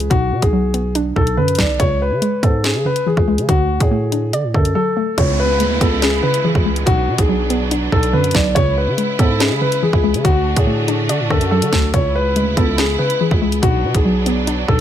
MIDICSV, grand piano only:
0, 0, Header, 1, 2, 480
1, 0, Start_track
1, 0, Tempo, 422535
1, 122, Time_signature, 4, 2, 24, 8
1, 16820, End_track
2, 0, Start_track
2, 0, Title_t, "Grand piano"
2, 0, Program_c, 0, 0
2, 116, Note_on_c, 0, 66, 110
2, 457, Note_off_c, 0, 66, 0
2, 480, Note_on_c, 0, 68, 83
2, 1045, Note_off_c, 0, 68, 0
2, 1318, Note_on_c, 0, 69, 87
2, 1541, Note_off_c, 0, 69, 0
2, 1561, Note_on_c, 0, 71, 87
2, 1782, Note_off_c, 0, 71, 0
2, 1802, Note_on_c, 0, 74, 73
2, 2023, Note_off_c, 0, 74, 0
2, 2040, Note_on_c, 0, 73, 95
2, 2262, Note_off_c, 0, 73, 0
2, 2294, Note_on_c, 0, 71, 86
2, 2739, Note_off_c, 0, 71, 0
2, 2770, Note_on_c, 0, 69, 78
2, 2987, Note_off_c, 0, 69, 0
2, 3006, Note_on_c, 0, 68, 79
2, 3225, Note_off_c, 0, 68, 0
2, 3249, Note_on_c, 0, 71, 85
2, 3467, Note_off_c, 0, 71, 0
2, 3492, Note_on_c, 0, 68, 81
2, 3938, Note_off_c, 0, 68, 0
2, 3961, Note_on_c, 0, 66, 110
2, 4300, Note_off_c, 0, 66, 0
2, 4322, Note_on_c, 0, 68, 86
2, 4886, Note_off_c, 0, 68, 0
2, 5161, Note_on_c, 0, 69, 78
2, 5381, Note_off_c, 0, 69, 0
2, 5398, Note_on_c, 0, 69, 85
2, 5851, Note_off_c, 0, 69, 0
2, 5885, Note_on_c, 0, 73, 82
2, 6104, Note_off_c, 0, 73, 0
2, 6130, Note_on_c, 0, 71, 95
2, 6577, Note_off_c, 0, 71, 0
2, 6601, Note_on_c, 0, 69, 77
2, 6822, Note_off_c, 0, 69, 0
2, 6846, Note_on_c, 0, 68, 88
2, 7065, Note_off_c, 0, 68, 0
2, 7074, Note_on_c, 0, 71, 89
2, 7299, Note_off_c, 0, 71, 0
2, 7320, Note_on_c, 0, 68, 72
2, 7772, Note_off_c, 0, 68, 0
2, 7795, Note_on_c, 0, 66, 119
2, 8137, Note_off_c, 0, 66, 0
2, 8162, Note_on_c, 0, 68, 85
2, 8726, Note_off_c, 0, 68, 0
2, 9001, Note_on_c, 0, 69, 88
2, 9222, Note_off_c, 0, 69, 0
2, 9239, Note_on_c, 0, 71, 89
2, 9461, Note_off_c, 0, 71, 0
2, 9480, Note_on_c, 0, 74, 75
2, 9702, Note_off_c, 0, 74, 0
2, 9715, Note_on_c, 0, 73, 101
2, 9939, Note_off_c, 0, 73, 0
2, 9971, Note_on_c, 0, 71, 87
2, 10418, Note_off_c, 0, 71, 0
2, 10447, Note_on_c, 0, 69, 82
2, 10666, Note_off_c, 0, 69, 0
2, 10679, Note_on_c, 0, 68, 78
2, 10901, Note_off_c, 0, 68, 0
2, 10923, Note_on_c, 0, 71, 87
2, 11143, Note_off_c, 0, 71, 0
2, 11167, Note_on_c, 0, 68, 83
2, 11616, Note_off_c, 0, 68, 0
2, 11638, Note_on_c, 0, 66, 117
2, 11978, Note_off_c, 0, 66, 0
2, 12000, Note_on_c, 0, 68, 85
2, 12565, Note_off_c, 0, 68, 0
2, 12843, Note_on_c, 0, 69, 81
2, 13059, Note_off_c, 0, 69, 0
2, 13076, Note_on_c, 0, 69, 91
2, 13530, Note_off_c, 0, 69, 0
2, 13564, Note_on_c, 0, 73, 84
2, 13784, Note_off_c, 0, 73, 0
2, 13807, Note_on_c, 0, 71, 95
2, 14256, Note_off_c, 0, 71, 0
2, 14283, Note_on_c, 0, 69, 77
2, 14503, Note_off_c, 0, 69, 0
2, 14529, Note_on_c, 0, 68, 86
2, 14747, Note_off_c, 0, 68, 0
2, 14755, Note_on_c, 0, 71, 86
2, 14979, Note_off_c, 0, 71, 0
2, 14999, Note_on_c, 0, 68, 74
2, 15452, Note_off_c, 0, 68, 0
2, 15476, Note_on_c, 0, 66, 112
2, 15817, Note_off_c, 0, 66, 0
2, 15843, Note_on_c, 0, 68, 80
2, 16406, Note_off_c, 0, 68, 0
2, 16679, Note_on_c, 0, 69, 92
2, 16820, Note_off_c, 0, 69, 0
2, 16820, End_track
0, 0, End_of_file